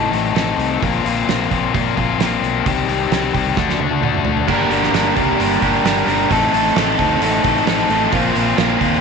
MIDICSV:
0, 0, Header, 1, 5, 480
1, 0, Start_track
1, 0, Key_signature, -2, "minor"
1, 0, Tempo, 456969
1, 854, Time_signature, 4, 2, 24, 8
1, 9463, End_track
2, 0, Start_track
2, 0, Title_t, "Overdriven electric guitar"
2, 0, Program_c, 0, 29
2, 4727, Note_on_c, 0, 67, 84
2, 4927, Note_off_c, 0, 67, 0
2, 4939, Note_on_c, 0, 67, 70
2, 5191, Note_off_c, 0, 67, 0
2, 5204, Note_on_c, 0, 67, 72
2, 5886, Note_off_c, 0, 67, 0
2, 5899, Note_on_c, 0, 67, 73
2, 6137, Note_on_c, 0, 43, 90
2, 6148, Note_on_c, 0, 50, 87
2, 6152, Note_off_c, 0, 67, 0
2, 6165, Note_on_c, 0, 67, 90
2, 6367, Note_off_c, 0, 67, 0
2, 6380, Note_on_c, 0, 67, 68
2, 6606, Note_off_c, 0, 43, 0
2, 6608, Note_off_c, 0, 67, 0
2, 6610, Note_off_c, 0, 50, 0
2, 8056, Note_on_c, 0, 45, 92
2, 8520, Note_off_c, 0, 45, 0
2, 9463, End_track
3, 0, Start_track
3, 0, Title_t, "Overdriven electric guitar"
3, 0, Program_c, 1, 29
3, 0, Note_on_c, 1, 45, 81
3, 0, Note_on_c, 1, 57, 85
3, 0, Note_on_c, 1, 60, 89
3, 0, Note_on_c, 1, 63, 95
3, 0, Note_on_c, 1, 69, 102
3, 117, Note_off_c, 1, 69, 0
3, 130, Note_off_c, 1, 63, 0
3, 130, Note_on_c, 1, 69, 65
3, 143, Note_on_c, 1, 63, 57
3, 153, Note_off_c, 1, 60, 0
3, 157, Note_on_c, 1, 60, 54
3, 351, Note_off_c, 1, 57, 0
3, 364, Note_on_c, 1, 57, 67
3, 367, Note_off_c, 1, 60, 0
3, 369, Note_off_c, 1, 45, 0
3, 369, Note_off_c, 1, 63, 0
3, 371, Note_on_c, 1, 60, 71
3, 377, Note_off_c, 1, 69, 0
3, 382, Note_on_c, 1, 63, 72
3, 389, Note_on_c, 1, 69, 78
3, 836, Note_off_c, 1, 57, 0
3, 845, Note_off_c, 1, 63, 0
3, 849, Note_off_c, 1, 69, 0
3, 855, Note_on_c, 1, 46, 75
3, 863, Note_on_c, 1, 53, 75
3, 868, Note_off_c, 1, 60, 0
3, 873, Note_on_c, 1, 58, 85
3, 880, Note_on_c, 1, 60, 92
3, 883, Note_on_c, 1, 65, 87
3, 1087, Note_off_c, 1, 65, 0
3, 1099, Note_on_c, 1, 65, 60
3, 1104, Note_off_c, 1, 60, 0
3, 1117, Note_off_c, 1, 58, 0
3, 1117, Note_on_c, 1, 60, 62
3, 1129, Note_on_c, 1, 58, 48
3, 1322, Note_off_c, 1, 53, 0
3, 1334, Note_on_c, 1, 53, 66
3, 1338, Note_off_c, 1, 46, 0
3, 1339, Note_off_c, 1, 58, 0
3, 1345, Note_off_c, 1, 60, 0
3, 1351, Note_on_c, 1, 58, 77
3, 1353, Note_off_c, 1, 65, 0
3, 1358, Note_on_c, 1, 60, 77
3, 1365, Note_on_c, 1, 65, 71
3, 1566, Note_off_c, 1, 65, 0
3, 1578, Note_on_c, 1, 65, 59
3, 1582, Note_off_c, 1, 60, 0
3, 1595, Note_on_c, 1, 60, 59
3, 1596, Note_off_c, 1, 58, 0
3, 1608, Note_on_c, 1, 58, 47
3, 1811, Note_off_c, 1, 53, 0
3, 1815, Note_on_c, 1, 46, 88
3, 1820, Note_off_c, 1, 58, 0
3, 1823, Note_on_c, 1, 53, 98
3, 1827, Note_off_c, 1, 60, 0
3, 1828, Note_off_c, 1, 65, 0
3, 1832, Note_on_c, 1, 58, 88
3, 1840, Note_on_c, 1, 60, 97
3, 1841, Note_on_c, 1, 65, 103
3, 2053, Note_off_c, 1, 65, 0
3, 2065, Note_off_c, 1, 60, 0
3, 2066, Note_on_c, 1, 65, 65
3, 2077, Note_on_c, 1, 60, 49
3, 2081, Note_off_c, 1, 58, 0
3, 2093, Note_on_c, 1, 58, 52
3, 2290, Note_off_c, 1, 53, 0
3, 2300, Note_off_c, 1, 46, 0
3, 2302, Note_off_c, 1, 58, 0
3, 2303, Note_on_c, 1, 53, 62
3, 2311, Note_off_c, 1, 60, 0
3, 2315, Note_on_c, 1, 58, 79
3, 2319, Note_off_c, 1, 65, 0
3, 2323, Note_on_c, 1, 60, 85
3, 2331, Note_on_c, 1, 65, 70
3, 2771, Note_off_c, 1, 53, 0
3, 2777, Note_off_c, 1, 58, 0
3, 2781, Note_off_c, 1, 60, 0
3, 2785, Note_off_c, 1, 65, 0
3, 2789, Note_on_c, 1, 48, 85
3, 2796, Note_on_c, 1, 51, 85
3, 2806, Note_on_c, 1, 55, 79
3, 2810, Note_on_c, 1, 60, 96
3, 2815, Note_on_c, 1, 67, 94
3, 3014, Note_off_c, 1, 67, 0
3, 3027, Note_on_c, 1, 67, 68
3, 3032, Note_off_c, 1, 60, 0
3, 3044, Note_off_c, 1, 55, 0
3, 3044, Note_on_c, 1, 60, 58
3, 3057, Note_on_c, 1, 55, 51
3, 3257, Note_off_c, 1, 51, 0
3, 3267, Note_off_c, 1, 55, 0
3, 3269, Note_off_c, 1, 48, 0
3, 3270, Note_on_c, 1, 51, 57
3, 3275, Note_off_c, 1, 60, 0
3, 3280, Note_on_c, 1, 55, 66
3, 3284, Note_off_c, 1, 67, 0
3, 3288, Note_on_c, 1, 60, 73
3, 3296, Note_on_c, 1, 67, 69
3, 3494, Note_off_c, 1, 67, 0
3, 3506, Note_on_c, 1, 67, 59
3, 3512, Note_off_c, 1, 60, 0
3, 3521, Note_off_c, 1, 55, 0
3, 3525, Note_on_c, 1, 60, 60
3, 3534, Note_on_c, 1, 55, 48
3, 3733, Note_off_c, 1, 67, 0
3, 3735, Note_off_c, 1, 51, 0
3, 3740, Note_on_c, 1, 50, 89
3, 3742, Note_off_c, 1, 60, 0
3, 3747, Note_off_c, 1, 55, 0
3, 3752, Note_on_c, 1, 57, 86
3, 3758, Note_on_c, 1, 62, 97
3, 3768, Note_on_c, 1, 66, 85
3, 3972, Note_off_c, 1, 66, 0
3, 3985, Note_on_c, 1, 66, 59
3, 3989, Note_off_c, 1, 62, 0
3, 4000, Note_off_c, 1, 57, 0
3, 4002, Note_on_c, 1, 62, 61
3, 4013, Note_on_c, 1, 57, 49
3, 4205, Note_off_c, 1, 50, 0
3, 4218, Note_off_c, 1, 57, 0
3, 4218, Note_on_c, 1, 50, 66
3, 4227, Note_off_c, 1, 62, 0
3, 4231, Note_on_c, 1, 57, 77
3, 4235, Note_off_c, 1, 66, 0
3, 4239, Note_on_c, 1, 62, 78
3, 4247, Note_on_c, 1, 66, 81
3, 4690, Note_off_c, 1, 50, 0
3, 4696, Note_off_c, 1, 57, 0
3, 4696, Note_on_c, 1, 43, 81
3, 4700, Note_off_c, 1, 62, 0
3, 4704, Note_off_c, 1, 66, 0
3, 4704, Note_on_c, 1, 50, 90
3, 4707, Note_on_c, 1, 55, 83
3, 4710, Note_on_c, 1, 58, 88
3, 4716, Note_on_c, 1, 62, 91
3, 4720, Note_on_c, 1, 70, 93
3, 4930, Note_off_c, 1, 70, 0
3, 4942, Note_off_c, 1, 62, 0
3, 4943, Note_on_c, 1, 70, 60
3, 4948, Note_off_c, 1, 58, 0
3, 4954, Note_off_c, 1, 55, 0
3, 4954, Note_on_c, 1, 62, 61
3, 4960, Note_on_c, 1, 58, 53
3, 4967, Note_on_c, 1, 55, 47
3, 5161, Note_off_c, 1, 43, 0
3, 5169, Note_off_c, 1, 50, 0
3, 5173, Note_off_c, 1, 55, 0
3, 5174, Note_on_c, 1, 43, 84
3, 5176, Note_off_c, 1, 58, 0
3, 5178, Note_off_c, 1, 62, 0
3, 5182, Note_on_c, 1, 50, 74
3, 5186, Note_off_c, 1, 70, 0
3, 5186, Note_on_c, 1, 55, 85
3, 5189, Note_on_c, 1, 58, 76
3, 5191, Note_on_c, 1, 62, 99
3, 5199, Note_on_c, 1, 70, 94
3, 5403, Note_off_c, 1, 70, 0
3, 5413, Note_off_c, 1, 62, 0
3, 5416, Note_on_c, 1, 70, 64
3, 5418, Note_off_c, 1, 58, 0
3, 5425, Note_on_c, 1, 62, 66
3, 5430, Note_off_c, 1, 55, 0
3, 5431, Note_on_c, 1, 58, 65
3, 5442, Note_on_c, 1, 55, 55
3, 5649, Note_off_c, 1, 43, 0
3, 5653, Note_off_c, 1, 50, 0
3, 5660, Note_off_c, 1, 55, 0
3, 5661, Note_on_c, 1, 43, 86
3, 5664, Note_off_c, 1, 58, 0
3, 5666, Note_on_c, 1, 50, 101
3, 5668, Note_off_c, 1, 62, 0
3, 5670, Note_off_c, 1, 70, 0
3, 5673, Note_on_c, 1, 55, 91
3, 5676, Note_on_c, 1, 58, 93
3, 5680, Note_on_c, 1, 62, 96
3, 5682, Note_on_c, 1, 70, 96
3, 5883, Note_off_c, 1, 70, 0
3, 5894, Note_off_c, 1, 62, 0
3, 5895, Note_on_c, 1, 70, 60
3, 5900, Note_off_c, 1, 58, 0
3, 5907, Note_on_c, 1, 62, 58
3, 5910, Note_off_c, 1, 55, 0
3, 5912, Note_on_c, 1, 58, 65
3, 5922, Note_on_c, 1, 55, 50
3, 6122, Note_off_c, 1, 55, 0
3, 6135, Note_on_c, 1, 55, 73
3, 6137, Note_off_c, 1, 58, 0
3, 6140, Note_off_c, 1, 62, 0
3, 6144, Note_off_c, 1, 43, 0
3, 6146, Note_off_c, 1, 50, 0
3, 6150, Note_on_c, 1, 58, 77
3, 6152, Note_off_c, 1, 70, 0
3, 6152, Note_on_c, 1, 62, 87
3, 6165, Note_on_c, 1, 70, 89
3, 6360, Note_off_c, 1, 70, 0
3, 6366, Note_off_c, 1, 62, 0
3, 6372, Note_on_c, 1, 70, 77
3, 6378, Note_on_c, 1, 62, 68
3, 6379, Note_off_c, 1, 58, 0
3, 6386, Note_off_c, 1, 55, 0
3, 6391, Note_on_c, 1, 58, 66
3, 6399, Note_on_c, 1, 55, 55
3, 6604, Note_off_c, 1, 70, 0
3, 6607, Note_off_c, 1, 62, 0
3, 6610, Note_on_c, 1, 45, 90
3, 6612, Note_off_c, 1, 55, 0
3, 6614, Note_off_c, 1, 58, 0
3, 6617, Note_on_c, 1, 57, 96
3, 6624, Note_on_c, 1, 60, 94
3, 6630, Note_on_c, 1, 63, 92
3, 6639, Note_on_c, 1, 69, 103
3, 6844, Note_off_c, 1, 69, 0
3, 6856, Note_on_c, 1, 69, 62
3, 6860, Note_off_c, 1, 63, 0
3, 6872, Note_on_c, 1, 63, 59
3, 6879, Note_off_c, 1, 60, 0
3, 6883, Note_on_c, 1, 60, 53
3, 7081, Note_off_c, 1, 45, 0
3, 7093, Note_off_c, 1, 57, 0
3, 7094, Note_on_c, 1, 45, 89
3, 7104, Note_off_c, 1, 60, 0
3, 7105, Note_on_c, 1, 57, 84
3, 7106, Note_off_c, 1, 63, 0
3, 7109, Note_on_c, 1, 60, 97
3, 7110, Note_off_c, 1, 69, 0
3, 7118, Note_on_c, 1, 63, 99
3, 7122, Note_on_c, 1, 69, 99
3, 7322, Note_off_c, 1, 69, 0
3, 7334, Note_off_c, 1, 63, 0
3, 7335, Note_on_c, 1, 69, 74
3, 7347, Note_on_c, 1, 63, 67
3, 7357, Note_off_c, 1, 60, 0
3, 7361, Note_on_c, 1, 60, 55
3, 7550, Note_off_c, 1, 45, 0
3, 7561, Note_off_c, 1, 57, 0
3, 7562, Note_on_c, 1, 45, 84
3, 7572, Note_off_c, 1, 63, 0
3, 7574, Note_on_c, 1, 57, 95
3, 7577, Note_off_c, 1, 60, 0
3, 7580, Note_off_c, 1, 69, 0
3, 7581, Note_on_c, 1, 60, 102
3, 7584, Note_on_c, 1, 63, 95
3, 7592, Note_on_c, 1, 69, 99
3, 7790, Note_off_c, 1, 69, 0
3, 7802, Note_on_c, 1, 69, 71
3, 7804, Note_off_c, 1, 63, 0
3, 7816, Note_on_c, 1, 63, 59
3, 7823, Note_off_c, 1, 60, 0
3, 7827, Note_on_c, 1, 60, 63
3, 8024, Note_off_c, 1, 57, 0
3, 8037, Note_on_c, 1, 57, 70
3, 8044, Note_off_c, 1, 60, 0
3, 8044, Note_off_c, 1, 63, 0
3, 8048, Note_on_c, 1, 60, 76
3, 8049, Note_off_c, 1, 45, 0
3, 8050, Note_off_c, 1, 69, 0
3, 8057, Note_on_c, 1, 63, 80
3, 8062, Note_on_c, 1, 69, 80
3, 8265, Note_off_c, 1, 69, 0
3, 8278, Note_on_c, 1, 69, 70
3, 8280, Note_off_c, 1, 63, 0
3, 8293, Note_on_c, 1, 63, 61
3, 8303, Note_off_c, 1, 60, 0
3, 8307, Note_on_c, 1, 60, 57
3, 8510, Note_off_c, 1, 57, 0
3, 8511, Note_off_c, 1, 69, 0
3, 8519, Note_off_c, 1, 63, 0
3, 8521, Note_on_c, 1, 46, 96
3, 8527, Note_on_c, 1, 53, 97
3, 8530, Note_off_c, 1, 60, 0
3, 8534, Note_on_c, 1, 58, 96
3, 8542, Note_on_c, 1, 60, 100
3, 8546, Note_on_c, 1, 65, 103
3, 8738, Note_off_c, 1, 65, 0
3, 8751, Note_on_c, 1, 65, 65
3, 8765, Note_off_c, 1, 60, 0
3, 8769, Note_on_c, 1, 60, 62
3, 8778, Note_off_c, 1, 58, 0
3, 8782, Note_on_c, 1, 58, 55
3, 8982, Note_off_c, 1, 46, 0
3, 8992, Note_off_c, 1, 53, 0
3, 8995, Note_on_c, 1, 46, 91
3, 9004, Note_on_c, 1, 53, 99
3, 9005, Note_off_c, 1, 58, 0
3, 9009, Note_off_c, 1, 65, 0
3, 9009, Note_on_c, 1, 58, 108
3, 9010, Note_off_c, 1, 60, 0
3, 9014, Note_on_c, 1, 60, 105
3, 9022, Note_on_c, 1, 65, 86
3, 9222, Note_off_c, 1, 65, 0
3, 9234, Note_on_c, 1, 65, 67
3, 9248, Note_off_c, 1, 60, 0
3, 9252, Note_on_c, 1, 60, 62
3, 9257, Note_off_c, 1, 58, 0
3, 9261, Note_on_c, 1, 58, 56
3, 9462, Note_off_c, 1, 46, 0
3, 9463, Note_off_c, 1, 53, 0
3, 9463, Note_off_c, 1, 58, 0
3, 9463, Note_off_c, 1, 60, 0
3, 9463, Note_off_c, 1, 65, 0
3, 9463, End_track
4, 0, Start_track
4, 0, Title_t, "Fingered electric bass"
4, 0, Program_c, 2, 33
4, 121, Note_on_c, 2, 33, 74
4, 330, Note_off_c, 2, 33, 0
4, 368, Note_on_c, 2, 33, 69
4, 575, Note_off_c, 2, 33, 0
4, 605, Note_on_c, 2, 36, 79
4, 814, Note_off_c, 2, 36, 0
4, 869, Note_on_c, 2, 34, 78
4, 1068, Note_off_c, 2, 34, 0
4, 1094, Note_on_c, 2, 34, 68
4, 1300, Note_off_c, 2, 34, 0
4, 1339, Note_on_c, 2, 34, 75
4, 1544, Note_off_c, 2, 34, 0
4, 1588, Note_on_c, 2, 34, 80
4, 1790, Note_off_c, 2, 34, 0
4, 1831, Note_on_c, 2, 46, 81
4, 2032, Note_off_c, 2, 46, 0
4, 2076, Note_on_c, 2, 34, 72
4, 2275, Note_off_c, 2, 34, 0
4, 2288, Note_on_c, 2, 34, 81
4, 2500, Note_off_c, 2, 34, 0
4, 2537, Note_on_c, 2, 35, 73
4, 2745, Note_off_c, 2, 35, 0
4, 2794, Note_on_c, 2, 36, 79
4, 2995, Note_off_c, 2, 36, 0
4, 3025, Note_on_c, 2, 36, 73
4, 3231, Note_off_c, 2, 36, 0
4, 3260, Note_on_c, 2, 36, 84
4, 3468, Note_off_c, 2, 36, 0
4, 3513, Note_on_c, 2, 36, 73
4, 3715, Note_off_c, 2, 36, 0
4, 3753, Note_on_c, 2, 38, 87
4, 3956, Note_off_c, 2, 38, 0
4, 3975, Note_on_c, 2, 38, 67
4, 4186, Note_off_c, 2, 38, 0
4, 4209, Note_on_c, 2, 38, 76
4, 4422, Note_off_c, 2, 38, 0
4, 4453, Note_on_c, 2, 38, 77
4, 4664, Note_off_c, 2, 38, 0
4, 4711, Note_on_c, 2, 31, 86
4, 4891, Note_off_c, 2, 31, 0
4, 4935, Note_on_c, 2, 31, 75
4, 5121, Note_off_c, 2, 31, 0
4, 5176, Note_on_c, 2, 31, 77
4, 5362, Note_off_c, 2, 31, 0
4, 5430, Note_on_c, 2, 36, 78
4, 5610, Note_off_c, 2, 36, 0
4, 5663, Note_on_c, 2, 31, 86
4, 5845, Note_off_c, 2, 31, 0
4, 5902, Note_on_c, 2, 31, 75
4, 6084, Note_off_c, 2, 31, 0
4, 6139, Note_on_c, 2, 31, 73
4, 6322, Note_off_c, 2, 31, 0
4, 6378, Note_on_c, 2, 31, 76
4, 6561, Note_off_c, 2, 31, 0
4, 6627, Note_on_c, 2, 33, 76
4, 6806, Note_off_c, 2, 33, 0
4, 6862, Note_on_c, 2, 33, 85
4, 7043, Note_off_c, 2, 33, 0
4, 7104, Note_on_c, 2, 33, 87
4, 7284, Note_off_c, 2, 33, 0
4, 7345, Note_on_c, 2, 38, 78
4, 7524, Note_off_c, 2, 38, 0
4, 7586, Note_on_c, 2, 33, 82
4, 7764, Note_off_c, 2, 33, 0
4, 7820, Note_on_c, 2, 33, 74
4, 7999, Note_off_c, 2, 33, 0
4, 8061, Note_on_c, 2, 33, 75
4, 8239, Note_off_c, 2, 33, 0
4, 8294, Note_on_c, 2, 33, 81
4, 8474, Note_off_c, 2, 33, 0
4, 8539, Note_on_c, 2, 34, 86
4, 8717, Note_off_c, 2, 34, 0
4, 8784, Note_on_c, 2, 34, 82
4, 8959, Note_off_c, 2, 34, 0
4, 9014, Note_on_c, 2, 34, 92
4, 9193, Note_off_c, 2, 34, 0
4, 9254, Note_on_c, 2, 39, 80
4, 9432, Note_off_c, 2, 39, 0
4, 9463, End_track
5, 0, Start_track
5, 0, Title_t, "Drums"
5, 139, Note_on_c, 9, 46, 43
5, 244, Note_off_c, 9, 46, 0
5, 379, Note_on_c, 9, 46, 59
5, 383, Note_on_c, 9, 38, 98
5, 484, Note_off_c, 9, 46, 0
5, 488, Note_off_c, 9, 38, 0
5, 624, Note_on_c, 9, 46, 38
5, 729, Note_off_c, 9, 46, 0
5, 867, Note_on_c, 9, 36, 98
5, 871, Note_on_c, 9, 46, 57
5, 972, Note_off_c, 9, 36, 0
5, 976, Note_off_c, 9, 46, 0
5, 1113, Note_on_c, 9, 46, 46
5, 1218, Note_off_c, 9, 46, 0
5, 1352, Note_on_c, 9, 46, 58
5, 1356, Note_on_c, 9, 38, 103
5, 1457, Note_off_c, 9, 46, 0
5, 1461, Note_off_c, 9, 38, 0
5, 1590, Note_on_c, 9, 46, 43
5, 1591, Note_on_c, 9, 36, 77
5, 1695, Note_off_c, 9, 46, 0
5, 1696, Note_off_c, 9, 36, 0
5, 1834, Note_on_c, 9, 36, 103
5, 1836, Note_on_c, 9, 46, 58
5, 1939, Note_off_c, 9, 36, 0
5, 1941, Note_off_c, 9, 46, 0
5, 2073, Note_on_c, 9, 36, 68
5, 2079, Note_on_c, 9, 46, 41
5, 2178, Note_off_c, 9, 36, 0
5, 2185, Note_off_c, 9, 46, 0
5, 2314, Note_on_c, 9, 46, 64
5, 2318, Note_on_c, 9, 38, 108
5, 2419, Note_off_c, 9, 46, 0
5, 2423, Note_off_c, 9, 38, 0
5, 2559, Note_on_c, 9, 46, 41
5, 2664, Note_off_c, 9, 46, 0
5, 2796, Note_on_c, 9, 36, 97
5, 2799, Note_on_c, 9, 46, 62
5, 2902, Note_off_c, 9, 36, 0
5, 2904, Note_off_c, 9, 46, 0
5, 3038, Note_on_c, 9, 46, 47
5, 3143, Note_off_c, 9, 46, 0
5, 3275, Note_on_c, 9, 46, 70
5, 3280, Note_on_c, 9, 38, 99
5, 3380, Note_off_c, 9, 46, 0
5, 3385, Note_off_c, 9, 38, 0
5, 3512, Note_on_c, 9, 46, 48
5, 3514, Note_on_c, 9, 36, 74
5, 3617, Note_off_c, 9, 46, 0
5, 3619, Note_off_c, 9, 36, 0
5, 3751, Note_on_c, 9, 38, 57
5, 3752, Note_on_c, 9, 36, 113
5, 3856, Note_off_c, 9, 38, 0
5, 3857, Note_off_c, 9, 36, 0
5, 3881, Note_on_c, 9, 38, 49
5, 3986, Note_off_c, 9, 38, 0
5, 3989, Note_on_c, 9, 48, 54
5, 4094, Note_off_c, 9, 48, 0
5, 4110, Note_on_c, 9, 48, 56
5, 4215, Note_off_c, 9, 48, 0
5, 4234, Note_on_c, 9, 47, 68
5, 4339, Note_off_c, 9, 47, 0
5, 4354, Note_on_c, 9, 45, 62
5, 4459, Note_off_c, 9, 45, 0
5, 4461, Note_on_c, 9, 43, 78
5, 4566, Note_off_c, 9, 43, 0
5, 4591, Note_on_c, 9, 43, 72
5, 4696, Note_off_c, 9, 43, 0
5, 4710, Note_on_c, 9, 36, 96
5, 4710, Note_on_c, 9, 49, 95
5, 4815, Note_off_c, 9, 36, 0
5, 4815, Note_off_c, 9, 49, 0
5, 4945, Note_on_c, 9, 46, 50
5, 5050, Note_off_c, 9, 46, 0
5, 5074, Note_on_c, 9, 38, 30
5, 5179, Note_off_c, 9, 38, 0
5, 5191, Note_on_c, 9, 46, 65
5, 5195, Note_on_c, 9, 38, 105
5, 5296, Note_off_c, 9, 46, 0
5, 5300, Note_off_c, 9, 38, 0
5, 5424, Note_on_c, 9, 46, 44
5, 5428, Note_on_c, 9, 36, 78
5, 5529, Note_off_c, 9, 46, 0
5, 5533, Note_off_c, 9, 36, 0
5, 5671, Note_on_c, 9, 46, 76
5, 5776, Note_off_c, 9, 46, 0
5, 5905, Note_on_c, 9, 46, 48
5, 5906, Note_on_c, 9, 36, 74
5, 6010, Note_off_c, 9, 46, 0
5, 6011, Note_off_c, 9, 36, 0
5, 6148, Note_on_c, 9, 46, 68
5, 6152, Note_on_c, 9, 38, 92
5, 6253, Note_off_c, 9, 46, 0
5, 6257, Note_off_c, 9, 38, 0
5, 6383, Note_on_c, 9, 46, 44
5, 6488, Note_off_c, 9, 46, 0
5, 6625, Note_on_c, 9, 36, 98
5, 6625, Note_on_c, 9, 46, 75
5, 6730, Note_off_c, 9, 36, 0
5, 6730, Note_off_c, 9, 46, 0
5, 6870, Note_on_c, 9, 46, 60
5, 6975, Note_off_c, 9, 46, 0
5, 7103, Note_on_c, 9, 46, 77
5, 7107, Note_on_c, 9, 38, 103
5, 7208, Note_off_c, 9, 46, 0
5, 7212, Note_off_c, 9, 38, 0
5, 7339, Note_on_c, 9, 46, 60
5, 7343, Note_on_c, 9, 36, 88
5, 7444, Note_off_c, 9, 46, 0
5, 7448, Note_off_c, 9, 36, 0
5, 7582, Note_on_c, 9, 46, 85
5, 7687, Note_off_c, 9, 46, 0
5, 7816, Note_on_c, 9, 46, 53
5, 7820, Note_on_c, 9, 36, 81
5, 7921, Note_off_c, 9, 46, 0
5, 7925, Note_off_c, 9, 36, 0
5, 8056, Note_on_c, 9, 46, 76
5, 8061, Note_on_c, 9, 38, 106
5, 8161, Note_off_c, 9, 46, 0
5, 8166, Note_off_c, 9, 38, 0
5, 8300, Note_on_c, 9, 46, 45
5, 8405, Note_off_c, 9, 46, 0
5, 8532, Note_on_c, 9, 46, 73
5, 8537, Note_on_c, 9, 36, 104
5, 8637, Note_off_c, 9, 46, 0
5, 8642, Note_off_c, 9, 36, 0
5, 8775, Note_on_c, 9, 46, 54
5, 8880, Note_off_c, 9, 46, 0
5, 9012, Note_on_c, 9, 46, 71
5, 9016, Note_on_c, 9, 38, 112
5, 9117, Note_off_c, 9, 46, 0
5, 9121, Note_off_c, 9, 38, 0
5, 9254, Note_on_c, 9, 36, 75
5, 9256, Note_on_c, 9, 46, 54
5, 9359, Note_off_c, 9, 36, 0
5, 9361, Note_off_c, 9, 46, 0
5, 9463, End_track
0, 0, End_of_file